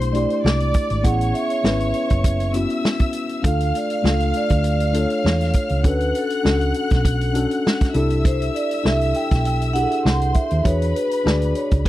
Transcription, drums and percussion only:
0.01 closed hi-hat
0.15 closed hi-hat
0.30 closed hi-hat
0.46 snare
0.60 closed hi-hat
0.74 kick, closed hi-hat
0.90 closed hi-hat
1.04 kick, closed hi-hat
1.21 closed hi-hat
1.35 closed hi-hat
1.50 closed hi-hat
1.65 snare
1.80 closed hi-hat
1.94 closed hi-hat
2.10 kick, closed hi-hat
2.24 kick, closed hi-hat
2.40 closed hi-hat
2.54 closed hi-hat
2.70 closed hi-hat
2.85 snare
2.99 kick, closed hi-hat
3.13 closed hi-hat
3.29 closed hi-hat
3.44 kick, closed hi-hat
3.60 closed hi-hat
3.75 closed hi-hat
3.90 closed hi-hat
4.05 snare
4.20 closed hi-hat
4.34 closed hi-hat
4.49 kick, closed hi-hat
4.64 closed hi-hat
4.80 closed hi-hat
4.94 closed hi-hat
5.10 closed hi-hat
5.26 snare
5.41 snare, closed hi-hat
5.53 kick, closed hi-hat
5.69 closed hi-hat
5.84 kick, closed hi-hat
6.00 closed hi-hat
6.15 closed hi-hat
6.30 closed hi-hat
6.45 snare
6.61 closed hi-hat
6.74 closed hi-hat
6.90 kick, snare, closed hi-hat
7.05 kick, closed hi-hat
7.21 closed hi-hat
7.35 closed hi-hat
7.51 closed hi-hat
7.67 snare
7.81 kick, snare, closed hi-hat
7.94 closed hi-hat
8.10 closed hi-hat
8.25 kick, closed hi-hat
8.42 closed hi-hat
8.56 closed hi-hat
8.71 closed hi-hat
8.86 snare
9.01 closed hi-hat
9.14 closed hi-hat
9.31 kick, snare, closed hi-hat
9.45 closed hi-hat
9.61 closed hi-hat
9.75 closed hi-hat
9.91 closed hi-hat
10.06 snare
10.21 closed hi-hat
10.34 kick, closed hi-hat
10.50 closed hi-hat
10.65 kick, closed hi-hat
10.82 closed hi-hat
10.96 closed hi-hat
11.11 closed hi-hat
11.27 snare
11.42 closed hi-hat
11.55 closed hi-hat
11.71 kick, closed hi-hat
11.85 kick, crash

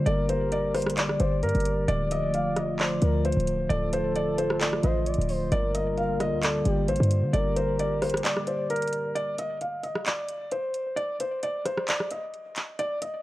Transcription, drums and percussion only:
0.06 closed hi-hat
0.29 closed hi-hat
0.52 closed hi-hat
0.75 cross-stick, closed hi-hat, open hi-hat
0.82 closed hi-hat
0.87 cross-stick, closed hi-hat
0.97 clap, closed hi-hat
1.09 cross-stick
1.20 closed hi-hat
1.43 closed hi-hat
1.49 closed hi-hat
1.55 closed hi-hat
1.60 closed hi-hat
1.65 closed hi-hat
1.88 closed hi-hat
2.11 closed hi-hat
2.34 closed hi-hat
2.56 cross-stick, closed hi-hat
2.79 clap, closed hi-hat
3.01 closed hi-hat
3.25 closed hi-hat
3.32 closed hi-hat
3.40 closed hi-hat
3.47 closed hi-hat
3.70 closed hi-hat
3.93 closed hi-hat
4.16 closed hi-hat
4.38 closed hi-hat
4.50 cross-stick
4.61 clap, closed hi-hat
4.73 cross-stick
4.83 closed hi-hat
5.06 closed hi-hat
5.14 closed hi-hat
5.22 closed hi-hat
5.29 open hi-hat
5.52 closed hi-hat
5.75 closed hi-hat
5.97 closed hi-hat
6.20 cross-stick, closed hi-hat
6.43 clap, closed hi-hat
6.65 closed hi-hat
6.88 closed hi-hat
6.96 closed hi-hat
7.03 closed hi-hat
7.11 closed hi-hat
7.34 closed hi-hat
7.57 closed hi-hat
7.79 closed hi-hat
8.02 cross-stick, closed hi-hat, open hi-hat
8.09 closed hi-hat
8.14 cross-stick, closed hi-hat
8.25 clap, closed hi-hat
8.37 cross-stick
8.47 closed hi-hat
8.70 closed hi-hat
8.76 closed hi-hat
8.82 closed hi-hat
8.88 closed hi-hat
8.93 closed hi-hat
9.16 closed hi-hat
9.38 closed hi-hat
9.61 closed hi-hat
9.84 closed hi-hat
9.96 cross-stick
10.06 clap, closed hi-hat
10.29 closed hi-hat
10.52 closed hi-hat
10.74 closed hi-hat
10.97 closed hi-hat
11.20 closed hi-hat
11.43 closed hi-hat
11.65 cross-stick, closed hi-hat
11.77 cross-stick
11.88 clap, closed hi-hat
12.00 cross-stick
12.11 closed hi-hat
12.34 closed hi-hat
12.56 clap, closed hi-hat
12.79 closed hi-hat
13.02 closed hi-hat

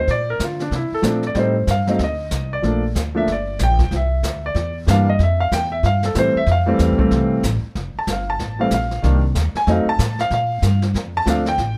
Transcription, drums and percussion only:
0.08 brush sweep, kick, snare
0.40 kick, snare, hi-hat pedal
0.60 snare
0.71 brush sweep, kick, snare
1.03 kick, snare, hi-hat pedal
1.23 snare
1.35 brush sweep, kick, snare
1.67 kick, snare, hi-hat pedal
1.87 snare
1.99 brush sweep, kick, snare
2.31 kick, snare, hi-hat pedal
2.64 brush sweep, kick, snare
2.96 kick, snare, hi-hat pedal
3.27 brush sweep, kick, snare
3.59 kick, snare, hi-hat pedal
3.79 kick, snare
3.91 brush sweep, kick, snare
4.23 kick, snare, hi-hat pedal
4.55 brush sweep, kick, snare
4.87 kick, snare, hi-hat pedal
5.19 brush sweep, kick, snare
5.52 kick, snare, hi-hat pedal
5.83 brush sweep, kick, snare
6.03 snare
6.15 kick, snare, hi-hat pedal
6.47 brush sweep, kick, snare
6.79 kick, snare, hi-hat pedal
6.99 kick
7.11 brush sweep, kick, snare
7.43 kick, snare, hi-hat pedal
7.75 brush sweep, kick, snare
8.07 kick, snare, hi-hat pedal
8.39 brush sweep, kick, snare
8.71 kick, snare, hi-hat pedal
8.91 snare
9.03 brush sweep, kick, snare
9.35 kick, snare, hi-hat pedal
9.55 snare
9.67 brush sweep, kick, snare
9.99 kick, snare, hi-hat pedal
10.19 snare
10.31 brush sweep, kick, snare
10.62 kick, snare, hi-hat pedal
10.82 snare
10.95 brush sweep, kick, snare
11.26 kick, snare, hi-hat pedal
11.46 snare
11.58 brush sweep, kick, snare

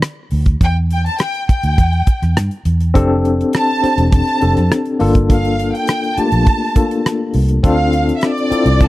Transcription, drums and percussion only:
0.02 cross-stick, closed hi-hat
0.31 open hi-hat
0.46 kick, closed hi-hat
0.61 kick, closed hi-hat
0.91 closed hi-hat
1.06 closed hi-hat
1.18 cross-stick, closed hi-hat
1.35 closed hi-hat
1.49 kick, closed hi-hat
1.63 closed hi-hat
1.78 kick, closed hi-hat
1.93 closed hi-hat
2.07 kick, closed hi-hat
2.23 cross-stick, closed hi-hat
2.37 cross-stick, closed hi-hat
2.51 closed hi-hat
2.65 closed hi-hat
2.80 closed hi-hat
2.95 kick, closed hi-hat
3.25 closed hi-hat
3.41 closed hi-hat
3.53 cross-stick, closed hi-hat
3.84 closed hi-hat
3.98 closed hi-hat
4.12 kick, closed hi-hat
4.27 cross-stick, closed hi-hat
4.41 closed hi-hat
4.57 cross-stick, closed hi-hat
4.72 cross-stick, closed hi-hat
4.85 closed hi-hat
5.00 open hi-hat
5.15 kick, closed hi-hat
5.30 kick, closed hi-hat
5.45 closed hi-hat
5.59 closed hi-hat
5.75 closed hi-hat
5.87 cross-stick, closed hi-hat
6.03 closed hi-hat
6.18 closed hi-hat
6.32 closed hi-hat
6.46 kick, closed hi-hat
6.76 kick, closed hi-hat
6.91 closed hi-hat
7.06 cross-stick, closed hi-hat
7.34 open hi-hat
7.49 closed hi-hat
7.64 kick, closed hi-hat
7.93 closed hi-hat
8.09 closed hi-hat
8.21 cross-stick, closed hi-hat
8.38 closed hi-hat
8.52 closed hi-hat
8.66 closed hi-hat
8.80 kick, closed hi-hat

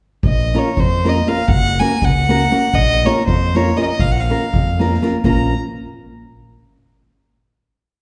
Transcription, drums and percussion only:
0.23 kick
0.39 snare
0.54 snare
0.77 kick
1.04 snare
1.15 snare
1.26 snare
1.48 kick
1.65 snare
1.80 snare
2.02 kick
2.28 snare
2.41 snare
2.52 snare
2.74 kick
2.91 snare
3.06 snare
3.28 kick
3.54 snare
3.67 snare
3.79 snare
3.99 kick
4.16 snare
4.32 snare
4.54 kick
4.82 snare
4.94 snare
5.04 snare
5.24 kick

